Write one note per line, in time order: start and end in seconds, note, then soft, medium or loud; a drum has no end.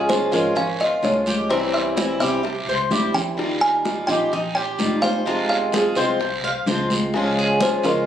0.00 0.26 C#2 medium
0.00 0.31 G#4 medium
0.09 0.32 F3 soft
0.09 0.32 G#3 medium
0.09 0.31 C#4 medium
0.09 0.30 F4 medium
0.09 0.31 C5 medium
0.09 high bongo medium
0.09 high conga loud
0.09 short guiro medium
0.32 0.99 G#1 medium
0.32 0.54 F3 medium
0.32 0.54 G#3 medium
0.32 0.55 C#4 medium
0.32 0.55 F4 medium
0.32 0.56 F4 medium
0.32 0.58 A#4 medium
0.32 high conga soft
0.32 low conga medium
0.32 short guiro medium
0.55 0.79 C#4 medium
0.55 0.78 F5 medium
0.55 muted steel-string acoustic guitar stroke medium
0.55 high bongo medium
0.55 high conga soft
0.55 low conga medium
0.55 long guiro medium
0.80 1.26 F4 medium
0.80 1.02 D#5 medium
0.80 high bongo soft
0.80 high conga soft
1.02 2.14 C2 medium
1.02 1.49 F3 soft
1.02 1.49 G#3 medium
1.02 1.50 C#4 soft
1.02 1.50 F4 soft
1.02 1.48 C#5 medium
1.02 high bongo soft
1.02 low bongo medium
1.02 high conga medium
1.02 short guiro medium
1.26 1.50 G4 medium
1.26 high bongo soft
1.26 high conga medium
1.26 short guiro medium
1.49 1.96 C3 medium
1.49 1.95 E3 medium
1.49 1.96 G3 medium
1.49 1.96 C4 medium
1.49 1.97 C4 medium
1.49 1.97 E4 medium
1.49 1.75 C5 medium
1.49 high bongo medium
1.49 long guiro medium
1.74 2.19 E5 medium
1.74 high conga soft
1.96 2.19 E3 medium
1.96 2.20 G3 medium
1.96 2.20 C4 medium
1.96 2.20 E4 medium
1.96 2.19 E4 medium
1.96 high bongo medium
1.96 high conga loud
1.96 short guiro medium
2.20 2.64 C2 medium
2.20 2.42 E3 medium
2.20 2.42 G3 medium
2.20 2.43 C4 medium
2.20 2.43 E4 medium
2.20 2.67 G4 medium
2.20 3.17 E5 medium
2.20 high bongo soft
2.20 high conga soft
2.20 short guiro medium
2.43 muted steel-string acoustic guitar stroke medium
2.43 high bongo medium
2.43 high conga soft
2.43 long guiro medium
2.67 2.89 C#2 medium
2.67 2.91 C5 medium
2.67 high bongo soft
2.67 high conga soft
2.90 4.02 D#2 medium
2.90 3.36 G3 medium
2.90 3.38 C4 soft
2.90 3.38 E4 medium
2.90 3.14 G4 medium
2.90 high bongo soft
2.90 low bongo medium
2.90 high conga medium
2.90 short guiro medium
3.14 3.63 G5 medium
3.14 high bongo soft
3.14 low conga medium
3.14 short guiro medium
3.37 3.83 D#3 medium
3.37 3.84 G3 medium
3.37 3.84 D#4 medium
3.37 3.85 F4 medium
3.37 high bongo medium
3.37 high conga soft
3.37 long guiro medium
3.61 4.08 A#4 medium
3.61 4.10 G#5 medium
3.61 high conga soft
3.85 4.07 D#3 soft
3.85 4.08 G3 medium
3.85 4.08 D#4 medium
3.85 4.07 F4 medium
3.85 high bongo medium
3.85 high conga loud
3.85 short guiro medium
4.07 4.75 A#1 loud
4.07 4.32 G3 soft
4.07 4.31 D#4 medium
4.07 4.31 F4 medium
4.07 4.32 G4 medium
4.07 4.54 G5 loud
4.07 high bongo soft
4.07 high conga soft
4.07 low conga medium
4.07 short guiro medium
4.32 4.55 D#4 medium
4.32 muted steel-string acoustic guitar stroke medium
4.32 high bongo medium
4.32 high conga soft
4.32 low conga medium
4.32 long guiro medium
4.55 5.02 G4 medium
4.55 4.99 G5 medium
4.55 high bongo soft
4.55 high conga soft
4.78 5.90 F1 medium
4.78 5.25 D#3 medium
4.78 5.25 G3 medium
4.78 5.26 D#4 medium
4.78 5.26 F4 medium
4.78 high bongo soft
4.78 low bongo medium
4.78 high conga medium
4.78 short guiro medium
5.02 5.26 C5 medium
5.02 5.48 F5 loud
5.02 high bongo soft
5.02 high conga medium
5.02 short guiro medium
5.25 5.72 C3 medium
5.25 5.72 F3 medium
5.25 5.72 G#3 medium
5.25 5.73 C4 medium
5.25 5.72 F4 medium
5.25 5.73 F4 medium
5.25 high bongo medium
5.25 long guiro medium
5.49 5.98 F5 medium
5.49 high conga soft
5.72 5.95 F3 soft
5.72 5.96 G#3 medium
5.72 5.96 C4 medium
5.72 5.96 F4 medium
5.72 5.96 G#4 medium
5.72 high bongo medium
5.72 high conga loud
5.72 short guiro medium
5.95 6.40 C2 medium
5.95 6.19 F3 medium
5.95 6.20 G#3 medium
5.95 6.20 C4 medium
5.95 6.19 F4 medium
5.95 6.40 C5 medium
5.95 6.42 C5 medium
5.95 high bongo soft
5.95 short guiro medium
6.20 muted steel-string acoustic guitar stroke medium
6.20 high bongo medium
6.20 high conga soft
6.20 long guiro medium
6.43 6.65 C2 medium
6.43 6.66 F5 medium
6.43 high bongo soft
6.43 high conga soft
6.66 7.77 C#2 medium
6.66 7.13 F3 soft
6.66 7.13 G#3 soft
6.66 7.14 C4 medium
6.66 7.14 F4 medium
6.66 6.90 C5 medium
6.66 high bongo soft
6.66 low bongo medium
6.66 high conga medium
6.66 short guiro medium
6.90 high bongo soft
6.90 high conga medium
6.90 short guiro medium
7.14 7.60 C#3 medium
7.14 7.59 F3 medium
7.14 7.60 G#3 medium
7.14 7.61 C#4 medium
7.14 7.61 F4 medium
7.14 high bongo medium
7.14 high conga soft
7.14 long guiro medium
7.37 7.83 G#4 medium
7.37 high conga soft
7.60 7.83 F3 soft
7.60 7.83 G#3 medium
7.60 7.84 C#4 medium
7.60 7.83 F4 medium
7.60 7.73 C5 medium
7.60 high bongo medium
7.60 high conga loud
7.60 short guiro medium
7.83 8.06 C#2 loud
7.83 8.06 F3 medium
7.83 8.06 G#3 medium
7.83 8.06 C#4 medium
7.83 8.06 F4 medium
7.83 8.06 A#4 medium
7.83 high bongo soft
7.83 high conga soft
7.83 low conga medium
7.83 short guiro medium